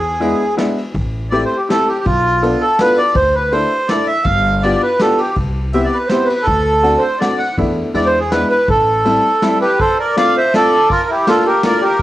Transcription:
Already playing: E2 G#4
0.20 G#3 B3 D4 E4, ride
0.57 G#3 B3 D4 E4, snare, ride
0.78 ride
0.94 A1, kick, ride
1.31 A3 C4 E4 G4 D5, ride
1.45 C5
1.56 G4
1.69 A3 C4 E4 G4 A4, snare, ride
1.88 G4, ride
1.99 G4
2.06 B1 F4, kick, ride
2.43 B3 D4 F4 A4, ride
2.60 A4
2.79 B3 D4 F4 A4 B4, snare, ride
2.97 D5, ride
3.15 D2 C5, kick, ride
3.35 B4
3.51 A3 D4 E4 A4 C5, ride
3.88 A3 D4 E4 A4 D5, snare, ride
4.06 E5, ride
4.24 G1 F5, kick, ride
4.62 B3 D4 F4 G4 D5, ride
4.83 B4
4.99 B3 D4 F4 G4 A4, snare, ride
5.18 G4, ride
5.35 C2, kick, ride
5.73 B3 C4 E4 G4 E5, ride
5.85 D5
5.94 B4
6.07 C5, snare, ride
6.11 B3 C4 E4 G4
6.25 B4
6.30 ride
6.43 A4, ride
6.47 D2, kick
6.83 A3 C4 D4 F#4, ride
6.98 C5
7.19 A3 C4 D4 F#4 D5, snare, ride
7.38 F#5, ride
7.57 E2 A3 B3 D4 E4, kick, ride
7.94 E2 G#3 B3 D4 E4 D5, ride
8.06 C5
8.19 G#4
8.31 G#3 B3 D4 E4 B4, snare, ride
8.50 B4, ride
8.68 A1 A4, kick, ride
9.05 G3 A3 C4 E4, ride
9.42 G3 A3 C4 E4, snare, ride
9.61 G4 B4, ride
9.80 A4 C5, kick, ride
9.99 A#4 D5
10.16 A3 C4 D4 F4 D5 F5, snare, ride
10.37 C5 E5
10.54 A3 C4 D4 F4 A4 D5, snare, ride
10.90 F4 A#4, kick, ride
11.09 E4 G4
11.27 A3 A#3 D4 F4 A4, snare, ride
11.46 G4 A#4
11.63 A3 A#3 D4 F4 A#4 D5, snare, ride
11.82 G4 A#4
11.99 ride

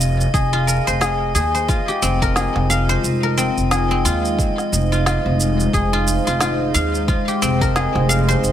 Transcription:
Already playing: F1 C4 F4 G#4 D#5
0.01 shaker
0.20 shaker
0.34 F1 G#4, kick, shaker
0.53 F4
0.67 A#4, shaker
0.87 F1 C5, shaker
1.01 G#4, snare, shaker
1.35 D#2 G#4, shaker
1.55 C5, shaker
1.68 G#3 D#4 F4 C5, kick, shaker
1.88 G4, shaker
2.02 F1 C4, shaker
2.22 A#4, kick, shaker
2.36 G#4, snare, shaker
2.56 F1, snare
2.70 F5, shaker
2.89 C5, shaker
3.04 F1, shaker
3.23 A#4
3.38 C4, shaker
3.57 F1, shaker
3.71 G#4, snare, shaker
3.91 C4
4.05 D#2 F4, shaker
4.25 shaker
4.39 kick, shaker
4.58 snare, shaker
4.72 F1, shaker
4.92 F4, shaker
5.06 F4, snare, shaker
5.26 F1
5.40 shaker
5.60 shaker
5.73 F1 G#4, kick, shaker
5.93 F4
6.08 shaker
6.27 F1 F4, shaker
6.41 F4, snare, shaker
6.74 D#2 F5, shaker
6.95 shaker
7.08 F4 G5, kick, shaker
7.28 G4, shaker
7.42 F1 C4, shaker
7.61 A#4, kick, shaker
7.76 G#4, snare, shaker
7.95 F1, snare
8.09 F5, shaker
8.28 C5, shaker
8.43 F1, shaker

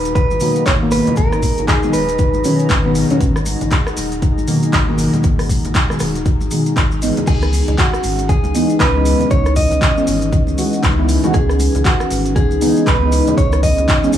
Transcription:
Already playing: D#1 A#2 B2 D#3 F#3 D#4 F#4 G#4 B4 A#5
0.05 closed hi-hat, maracas
0.15 B4, kick, closed hi-hat, maracas
0.31 G#1, high conga, maracas
0.40 B2 D#3 F#3 A#3, open hi-hat, low conga, maracas
0.55 closed hi-hat, maracas
0.65 G#1 C#5, kick, clap, closed hi-hat, high conga, maracas
0.81 B2 D#3 F#3 A#3
0.91 B4, open hi-hat, maracas
1.07 closed hi-hat, high conga, low conga, maracas
1.16 G#1 A#4, kick, closed hi-hat, maracas
1.32 cross-stick, maracas
1.42 kick, open hi-hat, high conga, maracas
1.58 G#1, closed hi-hat, low conga, maracas
1.68 G#4, kick, clap, closed hi-hat, maracas
1.83 B2 D#3 F#3 G#3, maracas
1.93 D#1 B4, open hi-hat, high conga, maracas
2.09 closed hi-hat, maracas
2.18 kick, closed hi-hat, maracas
2.34 G#1, high conga, maracas
2.44 B2 D#3 F#3 C#4, open hi-hat, maracas
2.59 closed hi-hat, maracas
2.69 G#1, kick, clap, closed hi-hat, high conga, maracas
2.85 B2 D#3 F#3 B3
2.95 open hi-hat, maracas
3.10 B2 D#3 F#3 C#4, closed hi-hat, high conga, low conga, maracas
3.21 G#1, kick, closed hi-hat, maracas
3.36 cross-stick, maracas
3.46 open hi-hat, high conga, maracas
3.61 G#1, closed hi-hat, low conga, maracas
3.71 kick, clap, closed hi-hat, maracas
3.87 cross-stick, maracas
3.97 D#1, open hi-hat, high conga, maracas
4.12 closed hi-hat, maracas
4.22 kick, closed hi-hat, maracas
4.38 G#1, high conga, maracas
4.48 B2 D#3 F#3 A#3, open hi-hat, low conga, maracas
4.63 closed hi-hat, maracas
4.73 G#1, kick, clap, closed hi-hat, high conga, maracas
4.88 B2 D#3 F#3 A#3
4.98 open hi-hat, maracas
5.13 closed hi-hat, high conga, low conga, maracas
5.23 G#1, kick, closed hi-hat, maracas
5.39 cross-stick, open hi-hat, maracas
5.49 kick, open hi-hat, high conga, maracas
5.65 G#1, closed hi-hat, low conga, maracas
5.74 kick, clap, closed hi-hat, maracas
5.90 B2 D#3 F#3 G#3, cross-stick, maracas
5.99 D#1, cross-stick, open hi-hat, high conga, maracas
6.15 closed hi-hat, maracas
6.26 kick, closed hi-hat, maracas
6.41 G#1, high conga, maracas
6.51 B2 D#3 F#3 G#3, open hi-hat, maracas
6.66 closed hi-hat, maracas
6.77 G#1, kick, clap, closed hi-hat, high conga, maracas
6.91 maracas
7.02 E3 G#3 B3 D#4, open hi-hat, maracas
7.17 closed hi-hat, high conga, low conga, maracas
7.27 C#2 E3 C#4 D#4 G#4 B4, kick, closed hi-hat, crash, maracas
7.42 cross-stick, maracas
7.53 open hi-hat, high conga, maracas
7.68 C#2, closed hi-hat, low conga, maracas
7.78 F#4, kick, clap, closed hi-hat, maracas
7.93 cross-stick, maracas
8.03 G#1, open hi-hat, high conga, maracas
8.19 closed hi-hat, maracas
8.29 G#4, kick, closed hi-hat, maracas
8.44 C#2, high conga, maracas
8.54 E3 G#3 B3 D#4, open hi-hat, low conga, maracas
8.70 closed hi-hat, maracas
8.80 C#2 B4, kick, clap, closed hi-hat, high conga, maracas
8.95 E3 G#3 B3 D#4
9.05 open hi-hat, maracas
9.20 closed hi-hat, high conga, low conga, maracas
9.31 C#2 C#5, kick, closed hi-hat, maracas
9.46 cross-stick, maracas
9.56 D#5, kick, open hi-hat, high conga, maracas
9.71 C#2, closed hi-hat, low conga, maracas
9.82 kick, clap, closed hi-hat, maracas
9.97 E3 G#3 B3 C#4, maracas
10.07 G#1, open hi-hat, high conga, maracas
10.21 closed hi-hat, maracas
10.33 kick, closed hi-hat, maracas
10.47 C#2, high conga, maracas
10.58 E3 G#3 B3 F#4, open hi-hat, maracas
10.73 closed hi-hat, maracas
10.83 C#2, kick, clap, closed hi-hat, high conga, maracas
10.98 E3 G#3 B3 E4
11.09 open hi-hat, maracas
11.24 E3 G#3 B3 F#4, closed hi-hat, high conga, low conga, maracas
11.34 C#2 G#4, kick, closed hi-hat, maracas
11.49 cross-stick, maracas
11.59 open hi-hat, high conga, maracas
11.75 C#2, closed hi-hat, low conga, maracas
11.85 F#4, kick, clap, closed hi-hat, maracas
12.00 cross-stick, maracas
12.11 G#1, open hi-hat, high conga, maracas
12.25 closed hi-hat, maracas
12.36 G#4, kick, closed hi-hat, maracas
12.51 C#2, high conga, maracas
12.61 E3 G#3 B3 D#4, open hi-hat, low conga, maracas
12.77 closed hi-hat, maracas
12.87 C#2 B4, kick, clap, closed hi-hat, high conga, maracas
13.02 E3 G#3 B3 D#4
13.12 open hi-hat, maracas
13.27 closed hi-hat, high conga, low conga, maracas
13.38 C#2 C#5, kick, closed hi-hat, maracas
13.52 cross-stick, maracas
13.63 D#5, kick, open hi-hat, high conga, maracas
13.78 C#2, closed hi-hat, low conga, maracas
13.88 kick, clap, closed hi-hat, maracas
14.03 E3 G#3 B3 C#4, maracas
14.13 G#1, open hi-hat, high conga, maracas

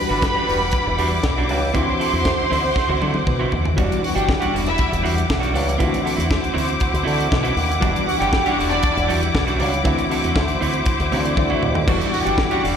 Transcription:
Already playing: E3 G3 D4 E4 F#4 B4 F#5 B5 D6
0.09 G1 G3 D4 F#4
0.22 muted clean electric guitar stroke, kick, snare, closed hi-hat
0.35 G3 D4 G4
0.47 E1 G3 D4 F#4, open hi-hat
0.60 muted clean electric guitar stroke
0.71 muted clean electric guitar stroke, kick, closed hi-hat
0.86 E1, muted clean electric guitar stroke
0.98 E2 G3 D4 F#4, open hi-hat
1.12 muted clean electric guitar stroke
1.23 B1, muted clean electric guitar stroke, kick, snare, closed hi-hat
1.37 G3 D4 F#4, snare
1.49 C#2 G3 D4 F#4, open hi-hat
1.61 muted clean electric guitar stroke
1.73 D2 E3 C4 D4 E4 F#4 C5 F#5 C6, kick, closed hi-hat
1.82 F#4
1.99 C4 E4 A4, open hi-hat
2.12 E2 C4 E4 F#4
2.25 muted clean electric guitar stroke, kick, snare, closed hi-hat
2.38 muted clean electric guitar stroke
2.50 D2 C4 E4 F#4, open hi-hat
2.63 muted clean electric guitar stroke
2.76 muted clean electric guitar stroke, kick, snare
2.89 D2 C4 E4 F#4
3.01 D3 C4 E4 F#4, high tom
3.14 muted clean electric guitar stroke, high tom
3.27 B2, muted clean electric guitar stroke, kick, mid tom
3.40 C4 E4 F#4
3.52 D#2, muted clean electric guitar stroke, floor tom
3.65 muted clean electric guitar stroke, floor tom
3.76 E1 E3 G3 B3 D4 E4 F#4 F#5 D6, kick, closed hi-hat
3.92 closed hi-hat
4.02 F#4 F#5, muted clean electric guitar stroke, open hi-hat
4.15 G1 G3 D4 F#4 G4 G5, closed hi-hat
4.28 muted clean electric guitar stroke, kick, snare
4.40 G3 D4 F#4 G4 F#5, closed hi-hat
4.53 E1 G3 D4 F#4, open hi-hat
4.66 E4 E5, muted clean electric guitar stroke, closed hi-hat
4.78 muted clean electric guitar stroke, kick, closed hi-hat
4.91 E1, muted clean electric guitar stroke, closed hi-hat
5.03 E2 G3 D4 F#4, open hi-hat
5.16 muted clean electric guitar stroke, closed hi-hat
5.28 B1, muted clean electric guitar stroke, kick, snare
5.40 G3 D4 F#4, snare, closed hi-hat
5.53 C#2 G3 D4 F#4, open hi-hat
5.66 muted clean electric guitar stroke, closed hi-hat
5.78 D2 E3 A3 C4 D4 E4 F4 F#4 C5, kick, closed hi-hat
5.88 F#4
5.94 closed hi-hat
6.04 C4 E4 A4, open hi-hat
6.16 E2 C4 E4 F#4, closed hi-hat
6.28 muted clean electric guitar stroke, kick, snare
6.41 muted clean electric guitar stroke, closed hi-hat
6.54 D2 C4 E4 F#4
6.58 open hi-hat
6.68 muted clean electric guitar stroke, closed hi-hat
6.80 muted clean electric guitar stroke, kick, closed hi-hat
6.91 D2, muted clean electric guitar stroke, closed hi-hat
7.03 D3 C4 E4 F#4
7.08 open hi-hat
7.16 C4 E4 F#4
7.21 closed hi-hat
7.30 B2, muted clean electric guitar stroke, kick, snare
7.43 C4 E4 F#4, closed hi-hat
7.56 D#2, muted clean electric guitar stroke, open hi-hat
7.69 muted clean electric guitar stroke, closed hi-hat
7.80 E1 E3 G3 B3 D4 F#4, kick, closed hi-hat
7.84 G3
7.96 closed hi-hat
8.07 F#4 F#5, muted clean electric guitar stroke, open hi-hat
8.19 G1 G3 D4 F#4 G4 G5, closed hi-hat
8.33 muted clean electric guitar stroke, kick, snare
8.46 G3 D4 F#4 G4 F#5, closed hi-hat
8.58 E1 G3 D4 F#4, open hi-hat
8.69 D4 D5, muted clean electric guitar stroke, closed hi-hat
8.83 muted clean electric guitar stroke, kick, closed hi-hat
8.96 E1, muted clean electric guitar stroke, closed hi-hat
9.08 E2 G3 D4 F#4, open hi-hat
9.22 muted clean electric guitar stroke, closed hi-hat
9.34 B1, muted clean electric guitar stroke, kick, snare
9.47 G3 D4 F#4, snare, closed hi-hat
9.59 C#2 G3 D4 F#4, open hi-hat
9.73 muted clean electric guitar stroke, closed hi-hat
9.84 D2 E3 A3 C4 D4 E4 F#4 C5, kick, closed hi-hat
9.98 closed hi-hat
10.11 C4 E4 A4, open hi-hat
10.23 E2 C4 E4 F#4, closed hi-hat
10.35 D2, muted clean electric guitar stroke, kick, snare
10.48 muted clean electric guitar stroke, closed hi-hat
10.61 D2 C4 E4 F#4, open hi-hat
10.73 muted clean electric guitar stroke, closed hi-hat
10.86 muted clean electric guitar stroke, kick, closed hi-hat
11.00 D2, muted clean electric guitar stroke, closed hi-hat
11.11 D3 E3 A3 C4 D4 E4 F#4, open hi-hat
11.25 C4 E4 F#4, closed hi-hat
11.36 D2 E4 D5, muted clean electric guitar stroke, kick, high tom
11.50 A3 C4 E4 F#4, mid tom
11.63 D#2 C5, muted clean electric guitar stroke, mid tom
11.75 C4 A4, muted clean electric guitar stroke, floor tom
11.86 E1 E3 G3 B3 D4 F#4 F#5, kick, crash
12.01 closed hi-hat
12.12 F#4 F#5, muted clean electric guitar stroke, open hi-hat
12.24 G1 G3 D4 F#4 G4 G5, closed hi-hat
12.38 muted clean electric guitar stroke, kick, snare
12.51 G3 D4 F#4 G4 F#5, closed hi-hat
12.63 E1 G3 D4 F#4, open hi-hat

